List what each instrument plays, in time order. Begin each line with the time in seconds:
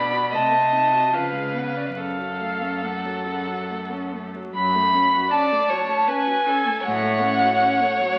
Already playing: cello B2, viola D4, violin D5 B5
0.13 viola F#4
0.33 cello C3, viola A3, violin D#5 A5
0.52 viola C4
0.72 viola D#4
0.92 viola F#4
1.12 cello C#3, viola F3, violin B4 F5
1.32 viola G#3
1.53 viola B3, violin F#5
1.67 violin F5
1.76 viola C#4, violin D5
1.86 violin F5
1.95 cello F#2, viola C#3, violin A4 F5
2.18 viola F#3
2.41 viola A3
2.63 viola C#4
2.84 viola A3, violin F#5
3.06 viola F#3
3.27 viola C#3
3.48 viola F#3
3.70 viola A3
3.92 viola C#4
4.14 viola A3
4.35 viola F#3
4.54 cello F#2, viola F#3, violin B5
4.75 viola A3
4.95 viola C#4
5.14 viola F#4
5.31 viola C#4, violin D5 A5
5.52 viola A3
5.69 viola F#3, violin C#5
5.88 viola A3
6.07 viola C#4, violin B4 G#5
6.27 viola F#4
6.46 viola C#4, violin A4
6.66 viola A3
6.84 cello A2, viola F#3, violin C#5 F#5
7.03 viola A3
7.21 viola C#4
7.41 viola F#4
7.62 viola C#4
7.82 viola A3
8.01 viola F#3